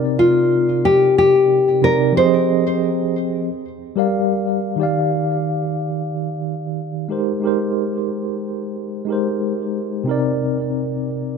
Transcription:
Already playing: tine electric piano C3 C4 D#4 A#4 D5
0.19 nylon-string guitar F4
0.85 nylon-string guitar G4
1.18 nylon-string guitar G4
1.81 tine electric piano C3 C4 D#4 A#4 D5, nylon-string guitar A#4
2.12 tine electric piano F3 C4 G4
2.17 tine electric piano G#4 D#5, nylon-string guitar C5
3.96 tine electric piano G3 G4 A#4 D5 F5
4.76 tine electric piano D#3 D#4 G4
4.81 tine electric piano D5 F5
7.09 tine electric piano G#3 D#4 G4 A#4 C5
7.40 tine electric piano G#3 D#4 G4
7.45 tine electric piano A#4 C5
9.05 tine electric piano G#3 D#4 G4
9.10 tine electric piano A#4 C5
10.04 tine electric piano C3 C4 D#4
10.09 tine electric piano A#4 D5

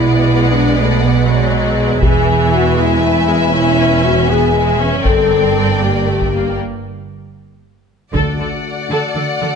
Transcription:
Already playing: double bass section B1, cello section B2, viola section G#3, french horn section E4, violin section B4 D5 F#5
0.51 french horn section D4
0.78 french horn section A3
1.02 french horn section B3
1.27 viola section F#3, french horn section G#3
2.02 double bass section E1, cello section E2, viola section E3, french horn section G#4, violin section B4 E5 G#5, taiko
2.53 french horn section F#4
2.78 viola section G#3, french horn section E4
3.02 viola section A3
3.27 viola section G#3
3.53 viola section C#4, french horn section E4
4.04 french horn section F#4
4.29 viola section B3, french horn section G#4
4.53 viola section G#3
4.79 viola section C#4
5.04 double bass section G1, cello section G2, viola section C4, french horn section A4, violin section A#4 D5 G5, taiko
5.81 viola section A#3, french horn section G4
6.07 viola section A3
6.21 taiko
6.33 viola section A#3
8.13 double bass section D2, cello section D3, timpani D3, french horn section A3 F#4, viola section A4, violin section D5 F#5, taiko
8.39 cello section D3, viola section A4
8.90 cello section D3, viola section A4
9.16 cello section D3, viola section A4
9.41 cello section D3, viola section A4

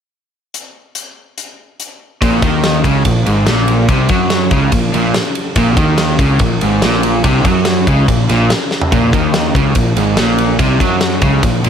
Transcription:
0.54 closed hi-hat
0.95 closed hi-hat
1.38 closed hi-hat
1.80 closed hi-hat
2.22 picked electric bass A#1, overdriven electric guitar A#2, kick, ride
2.42 picked electric bass D#2, overdriven electric guitar D#3, kick, ride
2.64 snare, ride
2.84 picked electric bass C#2, overdriven electric guitar C#3, kick, ride
3.05 picked electric bass A#1, overdriven electric guitar A#2, kick, ride
3.26 picked electric bass G#1, overdriven electric guitar G#2, ride
3.46 picked electric bass A#1, overdriven electric guitar A#2, snare, ride
3.57 snare
3.68 ride
3.89 picked electric bass C2, overdriven electric guitar C3, kick, ride
4.09 picked electric bass F#2, overdriven electric guitar F#3, kick, ride
4.30 snare, ride
4.51 picked electric bass C#2, overdriven electric guitar C#3, kick, ride
4.72 picked electric bass A#1, overdriven electric guitar A#2, kick, ride
4.93 picked electric bass A#1, overdriven electric guitar A#2, ride
5.14 snare, ride
5.35 ride
5.56 picked electric bass A#1, overdriven electric guitar A#2, kick, ride
5.77 picked electric bass D#2, overdriven electric guitar D#3, kick, ride
5.98 snare, ride
6.19 picked electric bass C#2, overdriven electric guitar C#3, kick, ride
6.39 picked electric bass A#1, overdriven electric guitar A#2, kick, ride
6.61 picked electric bass G#1, overdriven electric guitar G#2, ride
6.82 picked electric bass A#1, overdriven electric guitar A#2, snare, ride
6.93 snare
7.03 ride
7.24 picked electric bass C2, overdriven electric guitar C3, kick, ride
7.45 picked electric bass F#2, overdriven electric guitar F#3, kick, ride
7.65 snare, ride
7.87 picked electric bass C#2, overdriven electric guitar C#3, kick, ride
8.08 picked electric bass A#1, overdriven electric guitar A#2, kick, ride
8.29 picked electric bass A#1, overdriven electric guitar A#2, snare, ride
8.50 snare, ride
8.71 snare
8.82 floor tom
8.92 picked electric bass A#1, overdriven electric guitar A#2, kick, ride
9.13 picked electric bass D#2, overdriven electric guitar D#3, kick, ride
9.34 snare, ride
9.55 picked electric bass C#2, overdriven electric guitar C#3, kick, ride
9.75 picked electric bass A#1, overdriven electric guitar A#2, kick, ride
9.97 picked electric bass G#1, overdriven electric guitar G#2, ride
10.17 picked electric bass A#1, overdriven electric guitar A#2, snare, ride
10.38 ride
10.59 picked electric bass C2, overdriven electric guitar C3, kick, ride
10.80 picked electric bass F#2, overdriven electric guitar F#3, kick, ride
11.01 snare, ride
11.21 picked electric bass C#2, overdriven electric guitar C#3, kick, ride
11.43 picked electric bass A#1, overdriven electric guitar A#2, kick, ride
11.63 picked electric bass A#1, overdriven electric guitar A#2, ride

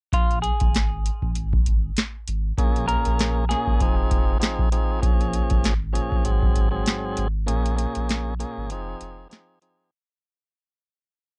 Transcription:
0.13 sub bass A#1, clean electric guitar F4, kick, closed hi-hat
0.31 closed hi-hat
0.42 clean electric guitar G#4, closed hi-hat
0.60 sub bass G#1, kick, closed hi-hat
0.75 snare, closed hi-hat
1.06 closed hi-hat
1.22 sub bass A#1, kick
1.35 sub bass G#1, closed hi-hat
1.53 kick
1.66 sub bass G#1, closed hi-hat
1.97 snare, closed hi-hat
2.28 sub bass G#1, closed hi-hat
2.57 sub bass A#1, tonewheel organ A#2 A#3 C#4 G#4, kick, closed hi-hat
2.76 closed hi-hat
2.87 tonewheel organ A#2 A#3 C#4 G#4, clean electric guitar A#4, closed hi-hat
3.05 sub bass A#1, closed hi-hat
3.19 snare, closed hi-hat
3.49 tonewheel organ A#2 A#3 C#4 G#4, clean electric guitar G#4, snare, closed hi-hat
3.67 sub bass G#1, kick
3.80 sub bass F1, tonewheel organ F3 C4 D#4 G#4, kick, closed hi-hat
4.11 sub bass F1, kick, closed hi-hat
4.40 tonewheel organ F3 C4 D#4 G#4, snare, closed hi-hat
4.59 kick
4.72 tonewheel organ F3 C4 D#4 G#4, closed hi-hat
5.01 sub bass A#1, tonewheel organ A#2 F3 C#4 G#4, kick, closed hi-hat
5.21 closed hi-hat
5.34 closed hi-hat
5.50 sub bass G#1, kick, closed hi-hat
5.64 snare, closed hi-hat
5.93 tonewheel organ A#2 F3 C#4 G#4, closed hi-hat
6.12 sub bass A#1, kick
6.24 sub bass G#1, tonewheel organ G#2 F#3 C4 G#4, closed hi-hat
6.43 kick
6.56 sub bass G#1, closed hi-hat
6.71 tonewheel organ G#2 F#3 C4 G#4
6.86 snare, closed hi-hat
7.17 sub bass G#1, closed hi-hat
7.47 sub bass A#1, tonewheel organ A#2 A#3 C#4 G#4, closed hi-hat
7.66 closed hi-hat
7.76 tonewheel organ A#2 A#3 C#4 G#4, closed hi-hat
7.95 sub bass A#1, closed hi-hat
8.09 snare, closed hi-hat
8.39 tonewheel organ A#2 A#3 C#4 G#4, closed hi-hat
8.58 sub bass G#1
8.70 sub bass F1, tonewheel organ F3 C4 D#4 G#4, closed hi-hat
9.01 sub bass F1, closed hi-hat
9.29 tonewheel organ F3 C4 D#4 G#4, snare, closed hi-hat
9.62 tonewheel organ F3 C4 D#4 G#4, closed hi-hat

